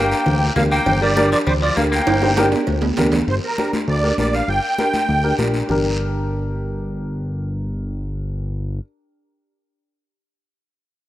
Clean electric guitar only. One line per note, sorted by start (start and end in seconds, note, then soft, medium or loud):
0.00 0.52 A#3 medium
0.56 0.61 A#3 medium
0.72 1.00 A#3 medium
1.02 1.30 G3 medium
1.32 1.37 F3 medium
1.47 1.52 G3 medium
1.62 1.76 F3 medium
1.77 1.82 A#3 medium
1.92 2.48 A#3 medium